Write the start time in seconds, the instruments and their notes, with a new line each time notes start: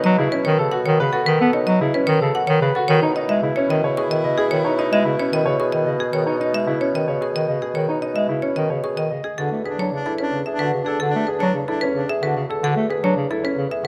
Already playing: bassoon B2
0.04 bass clarinet F#3, marimba D#5
0.18 bass clarinet C#3, grand piano E4
0.32 grand piano C#4, marimba B4
0.45 bass clarinet D#3, marimba C#5
0.59 bass clarinet C#3, grand piano A4
0.72 grand piano F#4, marimba F#5
0.86 bass clarinet D#3, marimba C#5
1.00 bass clarinet C#3, grand piano B4
1.13 grand piano F#4, marimba A4
1.26 bass clarinet D#3, marimba B4
1.40 bass clarinet B3, grand piano A4
1.53 grand piano D#4, marimba C#5
1.67 bass clarinet F#3, marimba D#5
1.81 bass clarinet C#3, grand piano E4
1.94 grand piano C#4, marimba B4
2.07 bass clarinet D#3, marimba C#5
2.21 bass clarinet C#3, grand piano A4
2.35 grand piano F#4, marimba F#5
2.47 bass clarinet D#3, marimba C#5
2.61 bass clarinet C#3, grand piano B4
2.75 grand piano F#4, marimba A4
2.88 bassoon B2, bass clarinet D#3, soprano saxophone E4, marimba C#5
3.02 bass clarinet D#4, grand piano C#5
3.16 grand piano D#4, marimba D#5
3.29 bass clarinet G#3, marimba E5
3.42 bass clarinet C#3, grand piano E4
3.56 grand piano C#4, marimba C#5
3.70 bass clarinet D#3, marimba D#5
3.84 bass clarinet C#3, grand piano C#5
3.97 grand piano G#4, marimba C#6
4.10 bass clarinet D#3, marimba D#5
4.24 bass clarinet C#3, grand piano D#5
4.38 marimba G#4, grand piano G#4
4.51 bass clarinet D#3, marimba C#5
4.65 bass clarinet D#4, grand piano C#5
4.79 grand piano D#4, marimba D#5
4.91 bass clarinet G#3, marimba E5
5.05 bass clarinet C#3, grand piano E4
5.19 grand piano C#4, marimba C#5
5.32 bass clarinet D#3, marimba D#5
5.46 bass clarinet C#3, grand piano C#5
5.59 grand piano G#4, marimba C#6
5.72 bass clarinet D#3, marimba D#5
5.86 bass clarinet C#3, grand piano D#5
6.00 grand piano G#4, marimba G#4
6.13 bass clarinet D#3, marimba C#5
6.26 bass clarinet D#4, grand piano C#5
6.40 grand piano D#4, marimba D#5
6.53 bass clarinet G#3, marimba E5
6.67 bass clarinet C#3, grand piano E4
6.80 grand piano C#4, marimba C#5
6.94 bass clarinet D#3, marimba D#5
7.08 bass clarinet C#3, grand piano C#5
7.21 grand piano G#4, marimba C#6
7.35 bass clarinet D#3, marimba D#5
7.48 bass clarinet C#3, grand piano D#5
7.62 marimba G#4, grand piano G#4
7.75 bass clarinet D#3, marimba C#5
7.89 bass clarinet D#4, grand piano C#5
8.02 grand piano D#4, marimba D#5
8.16 bass clarinet G#3, marimba E5
8.29 bass clarinet C#3, grand piano E4
8.42 grand piano C#4, marimba C#5
8.56 bass clarinet D#3, marimba D#5
8.70 bass clarinet C#3, grand piano C#5
8.84 grand piano G#4, marimba C#6
8.97 bass clarinet D#3, marimba D#5
9.10 bass clarinet C#3, grand piano D#5
9.24 marimba G#4, grand piano G#4
9.38 bassoon E2, bass clarinet D3, soprano saxophone D4, grand piano F#4, marimba A4
9.52 bass clarinet A3
9.65 soprano saxophone D4, grand piano G#4, marimba B4
9.78 bass clarinet F#3, grand piano D4, marimba C#5
9.92 bass clarinet C#3, soprano saxophone D4
10.06 grand piano E4, marimba A4
10.18 grand piano C#4, soprano saxophone D4, marimba B4
10.33 bass clarinet C#3
10.46 grand piano G#4, marimba E5
10.51 soprano saxophone D4
10.59 bass clarinet D3, grand piano F#4, marimba B4
10.73 bass clarinet C#3
10.80 soprano saxophone D4
10.86 marimba G#4, grand piano A4
11.00 bass clarinet D3, grand piano F#4, marimba A4
11.08 soprano saxophone D4
11.15 bass clarinet A3
11.27 grand piano G#4, marimba B4
11.37 soprano saxophone D4, marimba C#5
11.41 bass clarinet F#3, grand piano D4
11.55 bass clarinet C#3
11.65 soprano saxophone D4, grand piano E4, marimba A4
11.81 grand piano C#4, marimba B4
11.93 bass clarinet C#3, soprano saxophone D4
12.09 grand piano G#4, marimba E5
12.22 bass clarinet D3, soprano saxophone D4, grand piano F#4, marimba B4
12.36 bass clarinet C#3
12.50 marimba G#4, grand piano A4
12.63 bass clarinet D3, grand piano F#4, marimba A4
12.76 bass clarinet A3
12.90 grand piano G#4, marimba B4
13.03 bass clarinet F#3, grand piano D4, marimba C#5
13.16 bass clarinet C#3
13.31 grand piano E4, marimba A4
13.43 grand piano C#4, marimba B4
13.57 bass clarinet C#3
13.71 grand piano G#4, marimba E5
13.84 grand piano F#4